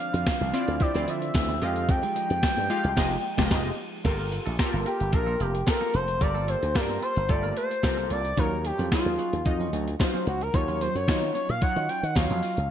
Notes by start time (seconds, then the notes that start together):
Already playing: D3 F3 C4 D4 F4 D5 F5
0.13 F2 F3 C4 E4, closed hi-hat
0.26 muted clean electric guitar stroke, kick, snare, closed hi-hat
0.41 C2 F3 C4 E4, closed hi-hat
0.53 F3 C4 E4 F4 D5, closed hi-hat
0.67 D2, muted clean electric guitar stroke, closed hi-hat
0.80 C4 E4 F4 G4 D5, muted clean electric guitar stroke, kick, closed hi-hat
0.94 D2 F3 C4 E4 F4 D5, closed hi-hat
1.07 D3 F3 C4 F4 E5, closed hi-hat
1.21 muted clean electric guitar stroke, closed hi-hat
1.34 D2, muted clean electric guitar stroke, kick, snare, closed hi-hat
1.49 F3 C4 E4, closed hi-hat
1.61 F2 F3 G#3 D#4 F4 G4 D#5 F5, closed hi-hat
1.75 muted clean electric guitar stroke, closed hi-hat
1.89 F2 G5, kick, closed hi-hat
2.03 G#3 D#4 G4, closed hi-hat
2.15 G#3 D#4 G4, closed hi-hat
2.30 F2, muted clean electric guitar stroke, closed hi-hat
2.42 muted clean electric guitar stroke, kick, snare, closed hi-hat
2.57 G2 G#3 D#4 G4, closed hi-hat
2.69 G#3 D#4 F4 G4 F5, closed hi-hat
2.84 C2, muted clean electric guitar stroke, closed hi-hat
2.96 F1 G#3 D#4 F4 G4 G#4 D#5, kick, snare, crash
3.37 F1 G#3 D#4 F4 G4, kick, snare
3.45 D#5
3.50 F1 G#3 D#4 F4 G4 D#5, kick, snare, crash
4.04 G1 A#3 F4 G4 A4 A#4, kick, closed hi-hat, crash
4.19 muted clean electric guitar stroke
4.31 muted clean electric guitar stroke, closed hi-hat
4.46 A#1 A#3 F4 A4, closed hi-hat
4.58 F4 G4 A4 A#4, muted clean electric guitar stroke, kick, snare, closed hi-hat
4.73 G1 A#3 F4 A4
4.85 A#3 F4 G4 A#4, closed hi-hat
5.00 G1, muted clean electric guitar stroke, closed hi-hat
5.12 A#1 F4 G4 A4 A#4, kick, closed hi-hat
5.26 A#3 F4 A4
5.39 F1 A#3 F4 G4 A#4, closed hi-hat
5.53 muted clean electric guitar stroke, closed hi-hat
5.66 F4 G4 A4 A#4, muted clean electric guitar stroke, kick, snare, closed hi-hat
5.81 A#3 F4 A4
5.93 F1 A#3 F4 A4 C5, closed hi-hat
6.08 muted clean electric guitar stroke, closed hi-hat
6.20 G1 F4 G4 A4 A#4 D5, muted clean electric guitar stroke, kick, closed hi-hat
6.34 A#3 F4 A4
6.47 A#3 F4 A4 C5, closed hi-hat
6.62 D2, muted clean electric guitar stroke, closed hi-hat
6.74 G2 F4 G4 A4 A#4, muted clean electric guitar stroke, kick, snare, closed hi-hat
6.82 A#4
6.89 A#3 F4 A4
7.02 A#3 F4 A4 C5, closed hi-hat
7.16 G1, muted clean electric guitar stroke, closed hi-hat
7.29 G1 A3 F4 G4 A4 D5, muted clean electric guitar stroke, kick, closed hi-hat
7.43 A#3 F4 A#4
7.56 A#3 F4 A4 C5, closed hi-hat
7.70 muted clean electric guitar stroke, closed hi-hat
7.83 C2 F4 G4 A4 A#4, muted clean electric guitar stroke, kick, snare, closed hi-hat
7.97 A#3 F4 A4
8.10 C2 A#3 F4 A4 D5, closed hi-hat
8.24 muted clean electric guitar stroke, closed hi-hat
8.37 D#2 F#3 C#4 D#4 F4 A#4 C#5, kick, closed hi-hat
8.51 muted clean electric guitar stroke
8.64 G4, muted clean electric guitar stroke, closed hi-hat
8.78 F2 F#3 C#4 F4, closed hi-hat
8.92 F#3 D#4 F4 G#4, kick, snare, closed hi-hat
9.05 D#2 F#3 C#4 F4
9.18 F#3 C#4 F#4, closed hi-hat
9.33 D#2, muted clean electric guitar stroke, closed hi-hat
9.45 F2 F#3 D#4 F4 D#5, muted clean electric guitar stroke, kick, closed hi-hat
9.60 F#3 C#4 F4
9.72 D2 F#3 C#4 F#4, closed hi-hat
9.86 muted clean electric guitar stroke, closed hi-hat
9.99 F#3 D#4 F4 C5, muted clean electric guitar stroke, kick, snare, closed hi-hat
10.14 F#3 C#4 F4
10.26 C#2 F#3 C#4 F4 F#4, closed hi-hat
10.41 A#4, muted clean electric guitar stroke, closed hi-hat
10.54 D#2 F#3 D#4 F4 C#5, muted clean electric guitar stroke, kick, closed hi-hat
10.68 F#3 C#4 F4, closed hi-hat
10.80 F#3 C#4 F4 C5, closed hi-hat
10.95 F#2 C#5, closed hi-hat
11.08 D#3 F#3 D#4 F4 C#5, muted clean electric guitar stroke, kick, snare, closed hi-hat
11.22 F#3 C#4 F4
11.35 F#3 C#4 F4 C#5, closed hi-hat
11.49 A#2 F5, muted clean electric guitar stroke, closed hi-hat
11.62 F#3 D#4 F4 C#5 F#5, muted clean electric guitar stroke, kick, closed hi-hat
11.76 D#3 F#3 C#4 F#4, closed hi-hat
11.89 F#3 C#4 F4 G5, closed hi-hat
12.03 D#3 F#5, muted clean electric guitar stroke, closed hi-hat
12.15 D#2 F#3 D#4 F4 C#5 F5, kick, snare, closed hi-hat
12.30 F2 F#3 C#4 F4
12.43 F#3 C#4 F4, open hi-hat
12.57 C#2, muted clean electric guitar stroke, closed hi-hat